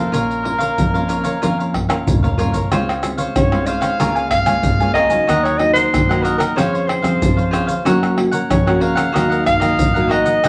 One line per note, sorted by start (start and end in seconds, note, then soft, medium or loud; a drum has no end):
0.00 0.11 C3 medium
0.00 0.44 A#3 medium
0.00 0.44 C#4 medium
0.00 0.45 F4 medium
0.00 0.12 A4 soft
0.00 2.03 A#4 medium
0.00 0.11 C5 soft
0.00 0.11 F5 soft
0.12 0.68 A#1 medium
0.12 0.75 A#2 medium
0.12 0.42 F4 medium
0.12 0.43 A#4 medium
0.12 0.43 C#5 medium
0.12 0.43 F5 medium
0.12 pandeiro medium
0.12 maracas medium
0.12 surdo medium
0.31 pandeiro soft
0.31 maracas soft
0.43 0.76 A#3 medium
0.43 0.76 C#4 soft
0.43 0.76 F4 medium
0.43 muted cavaquinho stroke soft
0.43 pandeiro medium
0.59 0.92 A#4 soft
0.59 0.92 C#5 medium
0.59 0.91 F5 medium
0.59 pandeiro medium
0.59 maracas medium
0.78 1.39 F2 medium
0.78 1.33 F2 medium
0.78 pandeiro medium
0.78 maracas medium
0.78 surdo medium
0.94 1.37 A#3 medium
0.94 1.37 C#4 medium
0.94 1.38 F4 medium
0.94 1.08 A#4 soft
0.94 1.08 C#5 soft
0.94 1.09 F5 soft
0.94 pandeiro soft
0.94 maracas soft
1.08 1.24 F4 soft
1.08 1.24 A#4 medium
1.08 1.24 C#5 medium
1.08 1.22 F5 soft
1.08 pandeiro medium
1.08 maracas medium
1.24 1.41 A#4 medium
1.24 1.40 C#5 medium
1.24 1.40 F5 medium
1.24 pandeiro medium
1.24 maracas medium
1.42 1.97 F2 medium
1.42 2.04 A#2 medium
1.42 1.85 A#3 soft
1.42 1.86 C#4 soft
1.42 1.57 F4 medium
1.42 1.86 F4 medium
1.42 1.57 A#4 medium
1.42 1.58 C#5 medium
1.42 1.58 F5 medium
1.42 pandeiro medium
1.42 maracas medium
1.42 surdo medium
1.59 1.73 A#4 soft
1.59 1.74 C#5 soft
1.59 1.74 F5 soft
1.59 pandeiro soft
1.59 maracas soft
1.74 muted cavaquinho stroke soft
1.74 pandeiro medium
1.74 tamborim medium
1.74 surdo medium
1.89 2.33 A#3 medium
1.89 2.33 C#4 medium
1.89 2.33 F4 medium
1.89 2.21 A#4 soft
1.89 2.21 C#5 medium
1.89 2.21 F5 medium
1.89 pandeiro medium
1.89 tamborim medium
1.89 maracas medium
2.07 2.68 F2 medium
2.07 2.34 A#2 medium
2.07 surdo medium
2.07 pandeiro medium
2.07 maracas medium
2.07 surdo loud
2.23 2.37 A#4 soft
2.23 2.38 C#5 soft
2.23 2.38 F5 medium
2.23 surdo medium
2.23 pandeiro soft
2.23 maracas soft
2.38 2.66 C2 medium
2.38 2.57 A#3 medium
2.38 2.57 C#4 soft
2.38 2.53 F4 medium
2.38 2.58 F4 soft
2.38 2.53 A#4 medium
2.38 2.53 C#5 medium
2.38 2.52 F5 medium
2.38 pandeiro medium
2.38 maracas medium
2.38 surdo medium
2.53 2.70 A#4 soft
2.53 2.69 C#5 soft
2.53 2.69 F5 soft
2.53 pandeiro medium
2.53 maracas medium
2.53 surdo medium
2.71 3.26 C#2 medium
2.71 3.32 C#3 medium
2.71 2.90 G#3 medium
2.71 2.90 C4 medium
2.71 3.02 F4 medium
2.71 2.91 F4 medium
2.71 3.02 C5 medium
2.71 3.03 C#5 medium
2.71 3.03 F5 medium
2.71 pandeiro medium
2.71 tamborim medium
2.71 maracas medium
2.71 surdo medium
2.89 pandeiro soft
2.89 tamborim medium
2.89 maracas soft
3.03 3.33 G#3 medium
3.03 3.34 C4 medium
3.03 3.34 F4 medium
3.03 muted cavaquinho stroke soft
3.03 pandeiro medium
3.03 tamborim medium
3.03 maracas medium
3.18 3.51 C5 medium
3.18 3.50 C#5 medium
3.18 3.49 F5 medium
3.18 pandeiro medium
3.18 maracas medium
3.35 3.97 G#2 soft
3.35 3.90 C#3 loud
3.35 3.68 C#5 medium
3.35 pandeiro medium
3.35 tamborim medium
3.35 maracas medium
3.35 surdo loud
3.52 3.95 G#3 medium
3.52 3.95 C4 medium
3.52 3.96 F4 medium
3.52 3.66 C5 soft
3.52 3.67 C#5 soft
3.52 3.67 F5 soft
3.52 pandeiro soft
3.52 tamborim medium
3.52 maracas soft
3.66 3.82 F4 soft
3.66 3.82 C5 soft
3.66 3.81 C#5 medium
3.66 4.30 F5 loud
3.66 3.80 F5 medium
3.66 pandeiro medium
3.66 maracas medium
3.81 3.98 C5 soft
3.81 3.98 C#5 medium
3.81 3.97 F5 medium
3.81 pandeiro medium
3.81 tamborim medium
3.81 maracas medium
4.00 4.41 C#2 medium
4.00 4.61 C#3 medium
4.00 4.30 G#3 medium
4.00 4.30 A#3 medium
4.00 4.31 F4 medium
4.00 4.15 A#4 medium
4.00 4.15 C#5 medium
4.00 4.15 F5 medium
4.00 4.14 G#5 medium
4.00 pandeiro medium
4.00 tamborim medium
4.00 maracas medium
4.00 surdo medium
4.15 4.30 C#5 soft
4.15 4.31 F5 soft
4.15 4.30 G#5 soft
4.15 pandeiro soft
4.15 maracas soft
4.31 4.92 F5 loud
4.31 muted cavaquinho stroke soft
4.31 pandeiro medium
4.31 tamborim medium
4.31 maracas medium
4.31 surdo medium
4.46 4.61 C#2 medium
4.46 4.74 G#3 medium
4.46 4.74 A#3 medium
4.46 4.74 F4 medium
4.46 4.79 C#5 medium
4.46 4.79 F5 medium
4.46 4.78 G#5 medium
4.46 pandeiro medium
4.46 tamborim medium
4.46 maracas medium
4.63 5.19 C#2 medium
4.63 5.25 C#3 medium
4.63 pandeiro medium
4.63 maracas medium
4.63 surdo loud
4.80 5.08 G#3 medium
4.80 5.08 A#3 medium
4.80 5.08 F4 medium
4.80 4.94 C#5 soft
4.80 4.94 F5 medium
4.80 4.95 G#5 medium
4.80 pandeiro soft
4.80 maracas soft
4.94 5.10 A#4 medium
4.94 5.10 C#5 medium
4.94 5.45 D#5 medium
4.94 5.09 F5 medium
4.94 5.09 G#5 medium
4.94 pandeiro medium
4.94 tamborim medium
5.10 5.55 F#3 medium
5.10 5.55 A#3 medium
5.10 5.55 D#4 medium
5.10 5.27 C#5 soft
5.10 5.26 F5 soft
5.10 5.26 G#5 soft
5.10 pandeiro soft
5.10 maracas medium
5.27 5.83 D#2 medium
5.27 5.89 D#3 medium
5.27 5.58 F#4 medium
5.27 5.58 A#4 medium
5.27 5.59 D#5 medium
5.27 5.59 F#5 medium
5.27 pandeiro medium
5.27 tamborim medium
5.27 maracas medium
5.27 surdo medium
5.44 5.59 C#5 medium
5.44 pandeiro soft
5.44 tamborim medium
5.44 maracas soft
5.58 6.03 F#3 soft
5.58 6.03 A#3 medium
5.58 6.04 D#4 medium
5.58 5.73 D#5 loud
5.58 muted cavaquinho stroke soft
5.58 pandeiro medium
5.58 tamborim medium
5.73 6.07 A#4 soft
5.73 6.24 C5 medium
5.73 6.07 D#5 medium
5.73 6.06 F#5 medium
5.73 pandeiro medium
5.73 maracas medium
5.92 6.54 A#2 medium
5.92 6.48 D#3 loud
5.92 pandeiro medium
5.92 tamborim medium
5.92 maracas medium
5.92 surdo loud
6.09 6.52 F#3 medium
6.09 6.52 A#3 medium
6.09 6.53 D#4 medium
6.09 6.22 A#4 soft
6.09 6.23 D#5 soft
6.09 6.24 F#5 soft
6.09 pandeiro soft
6.09 tamborim medium
6.09 maracas soft
6.22 6.39 F#4 soft
6.22 6.38 A#4 medium
6.22 6.39 A#4 medium
6.22 6.38 D#5 medium
6.22 6.37 F#5 medium
6.22 pandeiro medium
6.22 maracas medium
6.38 6.55 A#4 medium
6.38 6.56 A#4 medium
6.38 6.55 D#5 medium
6.38 6.54 F#5 medium
6.38 pandeiro medium
6.38 tamborim medium
6.38 maracas medium
6.56 6.98 F2 medium
6.56 7.18 F3 medium
6.56 7.00 C#4 medium
6.56 6.71 F4 medium
6.56 7.00 G#4 medium
6.56 6.72 C5 medium
6.56 6.89 C#5 medium
6.56 6.72 C#5 medium
6.56 6.72 F5 medium
6.56 pandeiro medium
6.56 tamborim medium
6.56 maracas medium
6.56 surdo medium
6.73 6.86 C5 soft
6.73 6.86 C#5 soft
6.73 6.87 F5 soft
6.73 pandeiro soft
6.73 maracas soft
6.87 7.53 C5 medium
6.87 muted cavaquinho stroke soft
6.87 pandeiro medium
6.87 tamborim medium
7.02 7.18 F2 medium
7.02 7.48 C4 medium
7.02 7.48 C#4 medium
7.02 7.48 G#4 medium
7.02 7.36 C5 medium
7.02 7.35 F5 medium
7.02 pandeiro medium
7.02 tamborim medium
7.02 maracas medium
7.21 7.76 F2 medium
7.21 7.83 F3 medium
7.21 pandeiro medium
7.21 maracas medium
7.21 surdo loud
7.37 7.51 C5 soft
7.37 7.52 C#5 soft
7.37 7.52 F5 medium
7.37 pandeiro soft
7.37 maracas soft
7.51 7.74 C4 medium
7.51 7.74 C#4 soft
7.51 7.67 F4 medium
7.51 7.75 G#4 medium
7.51 7.68 C5 medium
7.51 7.67 C#5 medium
7.51 7.66 F5 medium
7.51 pandeiro medium
7.51 tamborim medium
7.51 maracas medium
7.67 7.85 C5 soft
7.67 7.84 C#5 soft
7.67 7.83 F5 medium
7.67 pandeiro medium
7.67 maracas medium
7.85 8.40 F#2 medium
7.85 8.47 F#3 medium
7.85 8.13 A#3 medium
7.85 8.13 C#4 medium
7.85 8.17 F#4 medium
7.85 8.14 F#4 medium
7.85 8.17 A#4 medium
7.85 8.17 C#5 medium
7.85 8.18 F#5 medium
7.85 pandeiro medium
7.85 tamborim medium
7.85 maracas medium
7.85 surdo medium
8.03 pandeiro soft
8.03 tamborim medium
8.03 maracas soft
8.17 8.48 A#3 medium
8.17 8.48 C#4 medium
8.17 8.48 F#4 medium
8.17 muted cavaquinho stroke soft
8.17 pandeiro medium
8.17 tamborim medium
8.31 8.65 A#4 medium
8.31 8.65 C#5 medium
8.31 8.64 F#5 medium
8.31 pandeiro medium
8.31 maracas medium
8.50 9.05 F2 loud
8.50 9.11 C#3 medium
8.50 8.83 C#5 medium
8.50 pandeiro medium
8.50 tamborim medium
8.50 maracas medium
8.50 surdo loud
8.66 9.10 A#3 medium
8.66 9.10 C#4 medium
8.66 9.10 F#4 medium
8.66 8.80 A#4 soft
8.66 8.80 C#5 soft
8.66 8.81 F#5 soft
8.66 pandeiro soft
8.66 tamborim medium
8.66 maracas soft
8.80 8.96 F#4 soft
8.80 8.96 A#4 medium
8.80 8.95 C#5 medium
8.80 9.46 F5 loud
8.80 8.94 F#5 medium
8.80 pandeiro medium
8.95 9.12 A#4 medium
8.95 9.13 C#5 medium
8.95 9.12 F#5 medium
8.95 pandeiro medium
8.95 tamborim medium
8.95 maracas medium
9.12 9.56 D#2 medium
9.12 9.76 D#3 medium
9.12 9.58 F#3 medium
9.12 9.58 A#3 medium
9.12 9.59 D#4 medium
9.12 9.29 F#4 medium
9.12 9.29 A#4 medium
9.12 9.29 D#5 medium
9.12 9.28 F#5 medium
9.12 pandeiro medium
9.12 tamborim medium
9.12 maracas medium
9.12 surdo medium
9.29 9.43 A#4 soft
9.29 9.44 D#5 soft
9.29 9.44 F#5 medium
9.29 pandeiro soft
9.29 maracas soft
9.44 10.13 F5 loud
9.44 muted cavaquinho stroke soft
9.44 pandeiro medium
9.44 tamborim medium
9.44 maracas medium
9.44 surdo medium
9.60 9.76 D#2 medium
9.60 9.89 F#3 medium
9.60 9.90 A#3 medium
9.60 9.90 D#4 medium
9.60 9.93 A#4 medium
9.60 9.93 D#5 medium
9.60 pandeiro medium
9.60 tamborim medium
9.60 maracas medium
9.79 10.34 A1 medium
9.79 pandeiro medium
9.79 maracas medium
9.79 surdo loud
9.94 10.40 F#3 medium
9.94 10.40 A#3 medium
9.94 10.08 A#4 soft
9.94 10.09 D#5 medium
9.94 10.10 F#5 soft
9.94 pandeiro soft
9.94 maracas soft
9.98 10.40 D#4 medium
10.08 10.25 F#4 medium
10.08 10.25 A#4 medium
10.08 10.25 D#5 medium
10.08 10.48 D#5 loud
10.08 10.24 F#5 medium
10.08 pandeiro medium
10.08 tamborim medium
10.25 10.42 A#4 soft
10.25 10.42 D#5 soft
10.25 10.41 F#5 medium
10.25 pandeiro medium
10.25 maracas medium
10.43 10.48 G#1 medium
10.43 10.48 G#2 medium
10.43 10.48 F#3 medium
10.43 10.48 C4 medium
10.43 10.48 D#4 medium
10.43 10.48 G#4 medium
10.43 10.48 C5 medium
10.43 pandeiro medium
10.43 tamborim medium
10.43 maracas medium
10.43 surdo medium